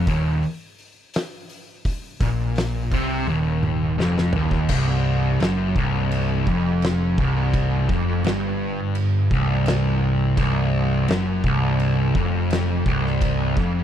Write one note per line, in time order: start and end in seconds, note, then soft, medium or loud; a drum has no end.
0.07 0.40 D#1 loud
0.07 0.42 D#2 loud
0.07 kick loud
0.07 open hi-hat medium
0.43 open hi-hat medium
0.78 open hi-hat medium
1.14 snare loud
1.14 open hi-hat medium
1.49 open hi-hat medium
1.85 kick loud
1.85 open hi-hat medium
2.20 2.88 A#1 medium
2.20 2.91 A#2 loud
2.20 kick loud
2.20 open hi-hat medium
2.56 snare loud
2.56 open hi-hat loud
2.92 3.25 C2 loud
2.92 3.27 C3 loud
2.92 kick loud
2.92 open hi-hat medium
3.27 3.94 D#1 loud
3.27 3.97 D#2 loud
3.27 high tom medium
3.63 mid tom medium
3.98 4.31 F1 medium
3.98 4.33 F2 loud
3.98 snare loud
4.18 snare medium
4.33 4.67 D#1 loud
4.33 4.69 D#2 loud
4.33 floor tom loud
4.51 kick medium
4.69 5.36 C1 loud
4.69 5.40 C2 loud
4.69 kick loud
4.69 crash loud
4.69 crash medium
5.40 5.73 F#1 loud
5.40 5.75 F#2 loud
5.40 snare loud
5.40 crash medium
5.76 6.43 C1 loud
5.76 6.46 C2 loud
5.76 kick loud
6.11 crash medium
6.47 7.14 F1 loud
6.47 7.17 F2 loud
6.47 kick medium
6.82 snare loud
6.82 crash medium
7.18 7.85 C1 loud
7.18 7.88 C2 loud
7.18 kick loud
7.54 kick loud
7.54 crash medium
7.89 8.22 F1 medium
7.89 8.24 F2 loud
7.89 kick loud
8.24 9.27 G1 loud
8.24 9.30 G2 loud
8.24 snare loud
8.24 crash medium
8.95 crash medium
9.31 10.33 C1 medium
9.31 10.36 C2 loud
9.31 kick loud
9.66 snare loud
9.66 crash medium
10.37 11.04 C1 loud
10.37 11.07 C2 loud
10.37 kick loud
10.37 crash medium
11.08 11.41 F#1 loud
11.08 11.43 F#2 loud
11.08 snare loud
11.08 crash medium
11.44 12.10 C1 loud
11.44 12.14 C2 loud
11.44 kick loud
11.80 crash medium
12.15 12.82 F1 medium
12.15 12.85 F2 loud
12.15 kick loud
12.50 snare loud
12.50 crash medium
12.86 13.53 C1 medium
12.86 13.56 C2 loud
12.86 kick loud
13.06 snare soft
13.21 kick loud
13.21 crash medium
13.57 13.84 F1 medium
13.57 13.84 F2 loud
13.57 kick loud